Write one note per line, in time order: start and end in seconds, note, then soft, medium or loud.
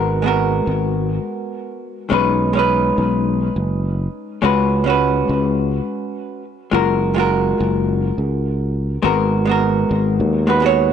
0.00 0.60 G#1 medium
0.00 0.21 G#3 medium
0.00 0.21 B3 medium
0.00 0.22 F#4 medium
0.00 0.22 A#4 medium
0.22 2.07 G#3 medium
0.22 2.08 B3 medium
0.22 2.09 F#4 medium
0.27 2.10 A#4 medium
0.67 1.18 G#1 medium
2.10 2.91 B1 medium
2.10 2.52 G#3 medium
2.10 2.52 C#4 medium
2.10 2.53 D#4 medium
2.10 2.53 B4 medium
2.53 4.38 G#3 medium
2.53 4.39 C#4 medium
2.53 4.40 D#4 medium
2.59 4.41 B4 medium
2.98 3.48 B1 medium
3.56 4.06 F#1 medium
4.42 5.22 C#2 medium
4.42 4.83 G#3 medium
4.42 4.83 C#4 medium
4.42 4.84 F#4 medium
4.42 4.84 B4 medium
4.84 6.41 G#3 medium
4.84 6.42 C#4 medium
4.84 6.43 F#4 medium
4.90 6.44 B4 medium
5.29 5.80 C#2 loud
6.71 7.52 F#1 medium
6.71 7.13 G#3 medium
6.71 7.14 F4 medium
6.71 7.14 F#4 medium
6.71 7.15 A#4 medium
7.14 8.99 G#3 medium
7.14 9.00 F4 medium
7.14 9.01 F#4 medium
7.20 9.02 A#4 medium
7.60 8.10 F#1 loud
8.18 8.97 C#2 medium
9.02 9.83 G#1 loud
9.02 9.44 G#3 medium
9.02 9.44 B3 medium
9.02 9.45 F#4 medium
9.02 9.45 A#4 medium
9.45 10.44 G#3 medium
9.45 10.45 B3 medium
9.45 10.46 F#4 medium
9.51 10.47 A#4 medium
9.91 10.21 G#1 loud
10.20 10.93 D#2 medium
10.47 10.59 G#3 medium
10.47 10.61 B3 medium
10.47 10.62 F#4 medium
10.47 10.62 B4 medium
10.60 10.93 G#3 medium
10.60 10.93 B3 medium
10.60 10.93 F#4 medium
10.66 10.93 C#5 medium